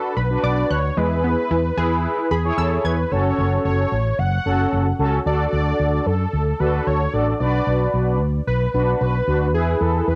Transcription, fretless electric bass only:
0.17 0.35 B1 loud
0.43 0.62 B1 loud
0.70 0.89 D2 medium
0.97 1.34 E2 loud
1.51 1.69 E2 loud
1.77 2.05 E2 loud
2.31 2.50 E2 loud
2.58 2.76 E2 loud
2.84 3.03 E2 medium
3.11 3.30 F#1 loud
3.38 3.57 F#1 loud
3.65 3.84 F#1 loud
3.92 4.11 A1 medium
4.19 4.37 F#1 loud
4.46 4.64 F#1 loud
4.72 4.91 F#1 loud
4.99 5.18 C#2 medium
5.26 5.45 D2 loud
5.53 5.71 D2 medium
5.80 5.98 D2 loud
6.06 6.25 F#2 loud
6.33 6.52 D2 loud
6.60 6.79 D2 loud
6.87 7.05 D2 loud
7.13 7.32 A1 medium
7.40 7.59 B1 loud
7.67 7.86 B1 loud
7.94 8.20 B1 loud
8.20 8.39 D2 medium
8.47 8.66 B1 loud
8.74 8.93 B1 loud
9.01 9.20 B1 loud
9.27 9.54 D2 medium
9.54 9.73 E2 loud
9.81 10.00 E2 loud
10.08 10.15 E2 loud

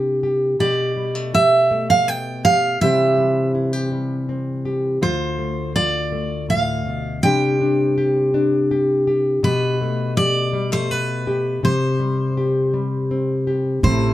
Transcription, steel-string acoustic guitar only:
0.00 0.19 G5 medium
0.60 1.30 D5 medium
1.34 1.90 E5 medium
1.90 2.08 F5 medium
2.08 2.44 G5 medium
2.45 2.81 F5 medium
2.81 3.51 E5 medium
5.03 5.72 C5 medium
5.76 6.45 D5 medium
6.50 7.23 F5 medium
7.23 9.03 G5 medium
9.44 10.13 B4 medium
10.17 10.72 D5 medium
10.73 10.91 C5 medium
10.91 11.64 B4 medium
11.65 13.44 C5 medium
13.84 14.14 C5 medium

